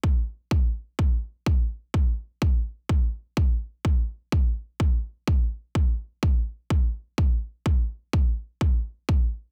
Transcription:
\new DrumStaff \with { instrumentName = "Drums" } \drummode { \time 4/4 \tempo 4 = 126 bd4 bd4 bd4 bd4 | bd4 bd4 bd4 bd4 | bd4 bd4 bd4 bd4 | bd4 bd4 bd4 bd4 |
bd4 bd4 bd4 bd4 | }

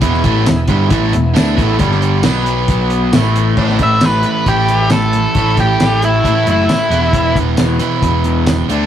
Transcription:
<<
  \new Staff \with { instrumentName = "Lead electric guitar" } { \time 4/4 \key a \major \tempo 4 = 135 r1 | r1 | r8 e''8 b'4 g'4 a'4~ | a'8 g'4 e'4 e'4.~ |
e'8 r2. r8 | }
  \new Staff \with { instrumentName = "Tonewheel organ" } { \time 4/4 \key a \major <b e' gis' e''>1 | <d' g' d''>4 <b fis' b'>2 <a e' a'>4 | r1 | r1 |
r1 | }
  \new Staff \with { instrumentName = "Overdriven electric guitar" } { \clef bass \time 4/4 \key a \major <e, b, e>8 <a, e a>8 <e, b,>8 <g, d g>8 <a, e a>8 <e, b,>8 <d a d'>8 <a, e a>8 | <g, d g>4 <b, fis b>2 <a, e a>4 | <a, e a>2 <a, e a>2 | <a, e a>2 <a, e a>4. <e, b, e>8~ |
<e, b, e>4. <e, b, e>2 <d a d'>8 | }
  \new Staff \with { instrumentName = "Overdriven electric guitar" } { \clef bass \time 4/4 \key a \major <e, b, e>8 <a, e a>8 <e, b,>8 <g, d g>8 <a, e a>8 <e, b,>8 <d a d'>8 <a, e a>8 | <g, d g>4 <b, fis b>2 <a, e a>4 | <a, e a>8 <a, e>8 <a, e a>8 <a, e>8 <a, e>8 <a, e a>8 <a, e>8 <a, e>8 | <a, e a>8 <a, e>8 <a, e a>8 <a, e>8 <a, e>8 <a, e a>8 <a, e>8 <e, b, e>8 |
<e, b, e>8 <e, b,>8 <e, b, e>8 <e, b,>8 <e, b,>8 <e, b, e>8 <e, b,>8 <d a d'>8 | }
  \new Staff \with { instrumentName = "Picked electric bass" } { \clef bass \time 4/4 \key a \major e,,8 a,,8 e,,8 g,,8 a,,8 e,,8 d,8 a,,8 | g,,4 b,,2 a,,4 | a,,8 a,,8 a,,8 r8 a,,2 | a,,4 a,,4 a,8 fis,,8 r8 e,,8 |
e,,8 e,,8 e,,8 r8 e,,4. d,8 | }
  \new DrumStaff \with { instrumentName = "Drums" } \drummode { \time 4/4 <hh bd>16 sn16 <hh bd>8 <hh sn tamb>8 <hh bd>8 <hh bd>8 hh8 <hh sn tamb>8 <hh bd>8 | <hh bd>16 sn16 hh8 <hh sn tamb>8 hh8 <hh bd>8 hh8 <hh sn tamb>8 hh8 | <cymc bd>16 sn16 <hh bd>8 <hh sn tamb>8 hh8 <hh bd>8 hh8 <hh sn tamb>8 hh8 | <hh bd>8 <hh bd>8 <hh sn tamb>8 hh8 <hh bd>8 hh8 <hh sn tamb>8 hh8 |
<hh bd>8 <hh bd>8 <hh sn tamb>8 hh8 <hh bd>8 hh8 <hh sn tamb>8 hh8 | }
>>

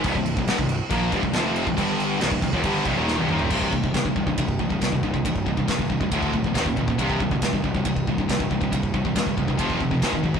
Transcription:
<<
  \new Staff \with { instrumentName = "Distorted electric guitar" } { \clef bass \time 4/4 \key c \minor \tempo 4 = 138 <c, g,>16 <c, g,>8 <c, g,>16 <g, d>16 <c, g,>8 r16 <bes, f bes>8 <g, d>16 <c, g,>16 <f, c f>8. <c, g,>16 | <g, d g>4 <c, g,>16 <c, g,>16 <c, g,>16 <ees, bes,>16 <g, d g>8 <c, g,>16 <ees, bes, ees>8 <c, g,>16 <ees, bes, ees>8 | <c, g, c>8 <c, g,>16 <c, g,>16 <c, g,>16 <c, g,>16 <c, g,>16 <c, g,>16 <c, g,>8 <c, g,>16 <c, g,>16 <c, g,>16 <c, g,>16 <c, g,>16 <c, g,>16 | <c, g,>8 <c, g,>16 <c, g,>16 <c, g,>16 <c, g,>16 <c, g,>16 <c, g,>16 <d, a, d>8 <d, a,>16 <d, a,>16 <ees, bes, ees>16 <ees, bes,>16 <ees, bes,>16 <ees, bes,>16 |
<c, g, c>8 <c, g,>16 <c, g,>16 <c, g,>16 <c, g,>16 <c, g,>16 <c, g,>16 <c, g,>8 <c, g,>16 <c, g,>16 <c, g,>16 <c, g,>16 <c, g,>16 <c, g,>16 | <c, g,>8 <c, g,>16 <c, g,>16 <c, g,>16 <c, g,>16 <c, g,>16 <c, g,>16 <f, c f>8 <f, c>16 <f, c>16 <aes, ees aes>16 <aes, ees>16 <aes, ees>16 <aes, ees>16 | }
  \new Staff \with { instrumentName = "Distorted electric guitar" } { \clef bass \time 4/4 \key c \minor <c, g,>16 <c, g,>8 <c, g,>16 <g, d>16 <c, g,>8 r16 <bes, f bes>8 <g, d>16 <c, g,>16 <f, c f>8. <c, g,>16 | <g, d g>4 <c, g,>16 <c, g,>16 <c, g,>16 <ees, bes,>16 <g, d g>8 <c, g,>16 <ees, bes, ees>8 <c, g,>16 <ees, bes, ees>8 | <c, g, c>8 <c, g,>16 <c, g,>16 <c, g,>16 <c, g,>16 <c, g,>16 <c, g,>16 <c, g,>8 <c, g,>16 <c, g,>16 <c, g,>16 <c, g,>16 <c, g,>16 <c, g,>16 | <c, g,>8 <c, g,>16 <c, g,>16 <c, g,>16 <c, g,>16 <c, g,>16 <c, g,>16 <d, a, d>8 <d, a,>16 <d, a,>16 <ees, bes, ees>16 <ees, bes,>16 <ees, bes,>16 <ees, bes,>16 |
<c, g, c>8 <c, g,>16 <c, g,>16 <c, g,>16 <c, g,>16 <c, g,>16 <c, g,>16 <c, g,>8 <c, g,>16 <c, g,>16 <c, g,>16 <c, g,>16 <c, g,>16 <c, g,>16 | <c, g,>8 <c, g,>16 <c, g,>16 <c, g,>16 <c, g,>16 <c, g,>16 <c, g,>16 <f, c f>8 <f, c>16 <f, c>16 <aes, ees aes>16 <aes, ees>16 <aes, ees>16 <aes, ees>16 | }
  \new Staff \with { instrumentName = "Picked electric bass" } { \clef bass \time 4/4 \key c \minor c,,16 c,,8 c,,16 g,,16 c,,8 r16 bes,,8 g,,16 c,,16 f,,8. c,,16 | g,,4 c,,16 c,,16 c,,16 ees,,16 g,,8 c,,16 ees,,8 c,,16 ees,,8 | c,,8 c,,8 g,,8 c,,8 c,,8 c,,8 c,,8 c,,8 | c,,8 c,,8 g,,8 c,,8 d,,8 e,,8 ees,,8 ees,,8 |
c,,8 c,,8 g,,8 c,,8 c,,8 c,,8 c,,8 c,,8 | c,,8 c,,8 g,,8 c,,8 f,,8 f,,8 aes,,8 aes,,8 | }
  \new DrumStaff \with { instrumentName = "Drums" } \drummode { \time 4/4 <cymc bd>16 bd16 cymc16 bd16 <cymc sn>16 bd16 cymc8 <cymc bd>8 <cymc bd>16 bd16 <cymc sn>8 cymc16 bd16 | <cymc bd>8 cymc8 <cymc sn>16 bd16 <cymc bd>16 bd16 <cymc bd>8 <cymc bd>8 sn16 tommh16 toml16 tomfh16 | <cymc bd>16 bd16 bd16 bd16 <bd rb sn>16 bd16 bd16 bd16 <bd rb>16 bd16 bd16 bd16 <bd rb sn>16 bd16 bd16 bd16 | <bd rb>16 bd16 bd16 bd16 <bd rb sn>16 bd16 bd16 bd16 <bd rb>16 bd16 bd16 bd16 <bd rb sn>16 bd16 bd16 bd16 |
<bd rb>16 bd16 bd16 bd16 <bd rb sn>16 bd16 bd16 bd16 <bd rb>16 bd16 bd16 bd16 <bd rb sn>16 bd16 bd16 bd16 | <bd rb>16 bd16 bd16 bd16 <bd rb sn>16 bd16 bd16 bd16 <bd rb>16 bd16 bd16 bd16 <bd rb sn>16 bd16 bd16 bd16 | }
>>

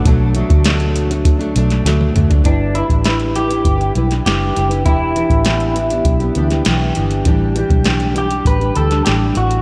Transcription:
<<
  \new Staff \with { instrumentName = "Clean electric guitar" } { \time 4/4 \key g \major \tempo 4 = 100 r1 | d'8 e'8 e'8 g'4 r8 g'4 | e'2. r4 | r4. g'8 b'8 a'8 g'8 fis'8 | }
  \new Staff \with { instrumentName = "Steel-string acoustic guitar" } { \time 4/4 \key g \major <b, fis a d'>8 <b, fis a d'>8 <b, fis a d'>8. <fis a d'>8 <fis a d'>16 <b, fis a d'>8 <b, fis a d'>8 <b, fis a d'>16 <fis a d'>16 | <g d' e' b'>8 <g d' e' b'>8 <g d' e' b'>8 <g d' e' b'>16 <d' e' b'>8 <d' e' b'>16 <g d' e' b'>16 <d' e' b'>16 <g d' e' b'>8 <g d' e' b'>16 <d' e' b'>16 | <e b d' g'>8 <e b d' g'>8 <e b d' g'>8 <e b d' g'>16 <b d' g'>8 <b d' g'>16 <e b d' g'>16 <b d' g'>16 <e b d' g'>8 <e b d' g'>8 | <a, e g d' g'>8 <e g d' g'>8 <a, e g d' g'>8 <e g d' g'>16 <g d' g'>8 <g d' g'>16 <e g d' g'>16 <g d' g'>16 <a, e g d' g'>8 <e g d'>8 | }
  \new Staff \with { instrumentName = "Fingered electric bass" } { \clef bass \time 4/4 \key g \major b,,8. d,4.~ d,16 b,,8 d,8 d,8 | g,,8. a,,4~ a,,16 g,,8 b,,8 fis,,8 fis,,8 | e,,8. a,,4~ a,,16 b,,8 d,8 b,,8 g,,8 | a,,8. b,,4~ b,,16 a,,8 d,8 a,,8 a,,8 | }
  \new DrumStaff \with { instrumentName = "Drums" } \drummode { \time 4/4 <hh bd>8 hh16 <hh bd>16 <hh sn>16 hh16 hh16 hh16 <hh bd>16 hh16 hh16 <hh sn>16 <hh sn>16 tommh16 <hh toml>16 <hh tomfh>16 | <hh bd>8 hh16 <hh bd>16 <hh sn>16 hh16 hh16 hh16 <hh bd>16 hh16 hh16 <hh sn>16 <hh sn>8 hh16 hh16 | <hh bd>8 hh16 <hh bd>16 <hh sn>16 hh16 hh16 hh16 <hh bd>16 hh16 hh16 <hh sn>16 <hh sn>8 hh16 hh16 | <hh bd>8 hh16 <hh bd>16 <hh sn>16 hh16 hh16 hh16 <hh bd>16 hh16 hh16 <hh sn>16 <hh sn>8 hh16 hh16 | }
>>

